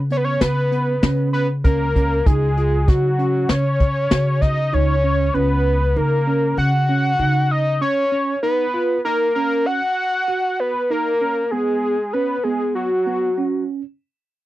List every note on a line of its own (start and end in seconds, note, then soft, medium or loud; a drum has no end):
0.00 0.37 C#3 medium
0.10 0.54 B3 medium
0.10 0.18 C#5 medium
0.10 closed hi-hat medium
0.17 0.26 B4 medium
0.24 0.40 C#5 medium
0.41 0.99 C#3 medium
0.41 1.29 B4 medium
0.41 snare medium
0.41 closed hi-hat medium
0.72 0.94 B3 medium
0.72 closed hi-hat medium
1.03 1.60 C#3 medium
1.03 1.46 C#4 medium
1.03 snare medium
1.03 closed hi-hat medium
1.33 1.47 B4 medium
1.33 closed hi-hat medium
1.64 2.22 C#2 medium
1.64 1.86 C#4 medium
1.64 2.28 A#4 medium
1.64 kick loud
1.64 closed hi-hat medium
1.96 2.17 C#4 medium
1.96 kick medium
1.96 closed hi-hat medium
2.26 2.84 C#2 medium
2.26 2.48 D#4 medium
2.26 2.90 G#4 medium
2.26 kick loud
2.26 closed hi-hat medium
2.57 2.79 F4 medium
2.57 closed hi-hat medium
2.88 3.46 C#3 medium
2.88 3.10 D#4 medium
2.88 3.51 F#4 medium
2.88 kick medium
2.88 snare soft
2.88 closed hi-hat medium
3.19 3.62 C#4 medium
3.19 closed hi-hat medium
3.49 4.07 C#3 medium
3.49 4.43 C#5 medium
3.49 snare loud
3.49 closed hi-hat medium
3.80 kick medium
3.80 closed hi-hat medium
4.11 4.69 C#3 medium
4.11 4.55 F#4 medium
4.11 snare loud
4.11 closed hi-hat medium
4.41 4.75 D#5 medium
4.41 kick medium
4.41 snare soft
4.41 closed hi-hat medium
4.73 5.31 C#2 medium
4.73 4.94 D#4 medium
4.73 5.35 C#5 medium
5.04 5.25 C#4 medium
5.34 5.93 C#2 medium
5.34 5.78 C#4 medium
5.34 5.98 B4 medium
5.96 6.54 C#3 medium
5.96 6.18 D#4 medium
5.96 6.57 A#4 medium
6.27 6.71 C#4 medium
6.57 7.15 C#3 medium
6.57 7.53 F#5 loud
6.89 7.11 C#4 medium
7.19 7.77 C#3 medium
7.19 7.63 D#4 medium
7.51 7.81 D#5 loud
7.81 8.03 C#4 medium
7.81 8.39 C#5 loud
8.12 8.34 C#4 medium
8.43 8.65 D#4 medium
8.43 9.00 B4 medium
8.74 8.96 F4 medium
9.05 9.27 D#4 medium
9.05 9.33 A#4 medium
9.35 9.79 C#4 medium
9.35 9.68 A#4 medium
9.66 10.61 F#5 loud
10.28 10.72 F#4 medium
10.60 10.90 B4 medium
10.90 11.12 D#4 medium
10.90 11.53 A#4 medium
11.21 11.43 C#4 medium
11.51 11.96 B3 medium
11.51 12.15 G#4 medium
12.13 12.36 C#4 medium
12.13 12.45 B4 medium
12.43 12.88 B3 medium
12.43 12.74 G#4 medium
12.75 13.64 F#4 medium
13.06 13.28 B3 medium
13.38 13.81 C#4 medium